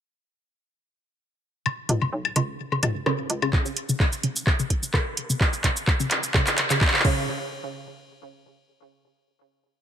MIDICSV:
0, 0, Header, 1, 4, 480
1, 0, Start_track
1, 0, Tempo, 468750
1, 1697, Time_signature, 4, 2, 24, 8
1, 10053, End_track
2, 0, Start_track
2, 0, Title_t, "Synth arpeggio sound"
2, 0, Program_c, 0, 84
2, 1697, Note_on_c, 0, 49, 77
2, 1758, Note_off_c, 0, 49, 0
2, 2066, Note_on_c, 0, 49, 73
2, 2119, Note_off_c, 0, 49, 0
2, 2417, Note_on_c, 0, 49, 72
2, 2478, Note_off_c, 0, 49, 0
2, 2785, Note_on_c, 0, 49, 72
2, 2838, Note_off_c, 0, 49, 0
2, 3137, Note_on_c, 0, 49, 81
2, 3198, Note_off_c, 0, 49, 0
2, 3505, Note_on_c, 0, 49, 73
2, 3558, Note_off_c, 0, 49, 0
2, 3617, Note_on_c, 0, 49, 81
2, 3678, Note_off_c, 0, 49, 0
2, 3985, Note_on_c, 0, 49, 71
2, 4038, Note_off_c, 0, 49, 0
2, 4336, Note_on_c, 0, 49, 76
2, 4397, Note_off_c, 0, 49, 0
2, 4705, Note_on_c, 0, 49, 76
2, 4758, Note_off_c, 0, 49, 0
2, 5056, Note_on_c, 0, 49, 81
2, 5118, Note_off_c, 0, 49, 0
2, 5424, Note_on_c, 0, 49, 74
2, 5478, Note_off_c, 0, 49, 0
2, 5776, Note_on_c, 0, 49, 78
2, 5837, Note_off_c, 0, 49, 0
2, 6144, Note_on_c, 0, 49, 78
2, 6198, Note_off_c, 0, 49, 0
2, 6496, Note_on_c, 0, 49, 84
2, 6557, Note_off_c, 0, 49, 0
2, 6864, Note_on_c, 0, 49, 77
2, 6918, Note_off_c, 0, 49, 0
2, 7216, Note_on_c, 0, 49, 97
2, 7662, Note_off_c, 0, 49, 0
2, 10053, End_track
3, 0, Start_track
3, 0, Title_t, "FM bass"
3, 0, Program_c, 1, 39
3, 1936, Note_on_c, 1, 37, 95
3, 2142, Note_off_c, 1, 37, 0
3, 2177, Note_on_c, 1, 35, 89
3, 2382, Note_off_c, 1, 35, 0
3, 2417, Note_on_c, 1, 37, 83
3, 2622, Note_off_c, 1, 37, 0
3, 2895, Note_on_c, 1, 37, 82
3, 3101, Note_off_c, 1, 37, 0
3, 3376, Note_on_c, 1, 37, 89
3, 3582, Note_off_c, 1, 37, 0
3, 10053, End_track
4, 0, Start_track
4, 0, Title_t, "Drums"
4, 1697, Note_on_c, 9, 76, 59
4, 1697, Note_on_c, 9, 77, 39
4, 1800, Note_off_c, 9, 76, 0
4, 1800, Note_off_c, 9, 77, 0
4, 1936, Note_on_c, 9, 42, 81
4, 1936, Note_on_c, 9, 45, 73
4, 2038, Note_off_c, 9, 42, 0
4, 2038, Note_off_c, 9, 45, 0
4, 2064, Note_on_c, 9, 77, 40
4, 2167, Note_off_c, 9, 77, 0
4, 2304, Note_on_c, 9, 76, 61
4, 2406, Note_off_c, 9, 76, 0
4, 2416, Note_on_c, 9, 42, 83
4, 2417, Note_on_c, 9, 77, 40
4, 2518, Note_off_c, 9, 42, 0
4, 2520, Note_off_c, 9, 77, 0
4, 2786, Note_on_c, 9, 77, 41
4, 2888, Note_off_c, 9, 77, 0
4, 2895, Note_on_c, 9, 42, 85
4, 2898, Note_on_c, 9, 45, 76
4, 2898, Note_on_c, 9, 76, 64
4, 2998, Note_off_c, 9, 42, 0
4, 3000, Note_off_c, 9, 45, 0
4, 3000, Note_off_c, 9, 76, 0
4, 3135, Note_on_c, 9, 37, 102
4, 3138, Note_on_c, 9, 77, 41
4, 3238, Note_off_c, 9, 37, 0
4, 3240, Note_off_c, 9, 77, 0
4, 3376, Note_on_c, 9, 42, 84
4, 3478, Note_off_c, 9, 42, 0
4, 3506, Note_on_c, 9, 76, 64
4, 3506, Note_on_c, 9, 77, 41
4, 3608, Note_off_c, 9, 76, 0
4, 3608, Note_off_c, 9, 77, 0
4, 3615, Note_on_c, 9, 36, 108
4, 3616, Note_on_c, 9, 39, 45
4, 3718, Note_off_c, 9, 36, 0
4, 3718, Note_off_c, 9, 39, 0
4, 3744, Note_on_c, 9, 69, 28
4, 3847, Note_off_c, 9, 69, 0
4, 3856, Note_on_c, 9, 42, 85
4, 3958, Note_off_c, 9, 42, 0
4, 3984, Note_on_c, 9, 69, 52
4, 4087, Note_off_c, 9, 69, 0
4, 4095, Note_on_c, 9, 36, 110
4, 4097, Note_on_c, 9, 39, 49
4, 4198, Note_off_c, 9, 36, 0
4, 4199, Note_off_c, 9, 39, 0
4, 4224, Note_on_c, 9, 69, 41
4, 4327, Note_off_c, 9, 69, 0
4, 4336, Note_on_c, 9, 42, 88
4, 4439, Note_off_c, 9, 42, 0
4, 4465, Note_on_c, 9, 69, 52
4, 4567, Note_off_c, 9, 69, 0
4, 4575, Note_on_c, 9, 36, 116
4, 4576, Note_on_c, 9, 39, 55
4, 4678, Note_off_c, 9, 36, 0
4, 4679, Note_off_c, 9, 39, 0
4, 4704, Note_on_c, 9, 69, 43
4, 4807, Note_off_c, 9, 69, 0
4, 4815, Note_on_c, 9, 36, 58
4, 4816, Note_on_c, 9, 42, 88
4, 4918, Note_off_c, 9, 36, 0
4, 4918, Note_off_c, 9, 42, 0
4, 4945, Note_on_c, 9, 69, 53
4, 5047, Note_off_c, 9, 69, 0
4, 5055, Note_on_c, 9, 36, 117
4, 5057, Note_on_c, 9, 37, 104
4, 5057, Note_on_c, 9, 39, 64
4, 5158, Note_off_c, 9, 36, 0
4, 5159, Note_off_c, 9, 37, 0
4, 5159, Note_off_c, 9, 39, 0
4, 5296, Note_on_c, 9, 42, 90
4, 5399, Note_off_c, 9, 42, 0
4, 5425, Note_on_c, 9, 69, 54
4, 5527, Note_off_c, 9, 69, 0
4, 5536, Note_on_c, 9, 36, 118
4, 5537, Note_on_c, 9, 39, 71
4, 5638, Note_off_c, 9, 36, 0
4, 5639, Note_off_c, 9, 39, 0
4, 5664, Note_on_c, 9, 69, 29
4, 5767, Note_off_c, 9, 69, 0
4, 5775, Note_on_c, 9, 36, 62
4, 5777, Note_on_c, 9, 39, 76
4, 5777, Note_on_c, 9, 42, 92
4, 5878, Note_off_c, 9, 36, 0
4, 5879, Note_off_c, 9, 39, 0
4, 5879, Note_off_c, 9, 42, 0
4, 5904, Note_on_c, 9, 69, 53
4, 6006, Note_off_c, 9, 69, 0
4, 6015, Note_on_c, 9, 36, 118
4, 6016, Note_on_c, 9, 39, 81
4, 6118, Note_off_c, 9, 36, 0
4, 6118, Note_off_c, 9, 39, 0
4, 6144, Note_on_c, 9, 69, 43
4, 6246, Note_off_c, 9, 69, 0
4, 6255, Note_on_c, 9, 39, 86
4, 6255, Note_on_c, 9, 42, 96
4, 6358, Note_off_c, 9, 39, 0
4, 6358, Note_off_c, 9, 42, 0
4, 6382, Note_on_c, 9, 69, 51
4, 6485, Note_off_c, 9, 69, 0
4, 6495, Note_on_c, 9, 36, 121
4, 6495, Note_on_c, 9, 39, 92
4, 6597, Note_off_c, 9, 39, 0
4, 6598, Note_off_c, 9, 36, 0
4, 6623, Note_on_c, 9, 39, 82
4, 6623, Note_on_c, 9, 69, 43
4, 6726, Note_off_c, 9, 39, 0
4, 6726, Note_off_c, 9, 69, 0
4, 6735, Note_on_c, 9, 39, 92
4, 6735, Note_on_c, 9, 42, 96
4, 6838, Note_off_c, 9, 39, 0
4, 6838, Note_off_c, 9, 42, 0
4, 6864, Note_on_c, 9, 39, 84
4, 6864, Note_on_c, 9, 69, 53
4, 6966, Note_off_c, 9, 39, 0
4, 6966, Note_off_c, 9, 69, 0
4, 6976, Note_on_c, 9, 36, 124
4, 6976, Note_on_c, 9, 39, 102
4, 7040, Note_off_c, 9, 39, 0
4, 7040, Note_on_c, 9, 39, 89
4, 7078, Note_off_c, 9, 36, 0
4, 7105, Note_off_c, 9, 39, 0
4, 7105, Note_on_c, 9, 39, 90
4, 7160, Note_off_c, 9, 39, 0
4, 7160, Note_on_c, 9, 39, 93
4, 7216, Note_on_c, 9, 36, 110
4, 7216, Note_on_c, 9, 49, 87
4, 7263, Note_off_c, 9, 39, 0
4, 7318, Note_off_c, 9, 36, 0
4, 7318, Note_off_c, 9, 49, 0
4, 10053, End_track
0, 0, End_of_file